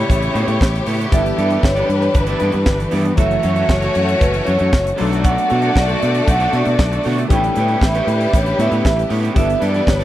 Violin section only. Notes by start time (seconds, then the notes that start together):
Already playing: G3 E4 C#5
1.12 D4 B4
3.17 A3 F#4 C#5
4.98 A3 F#4 D5
7.30 G3 E4 B4
9.37 D4 B4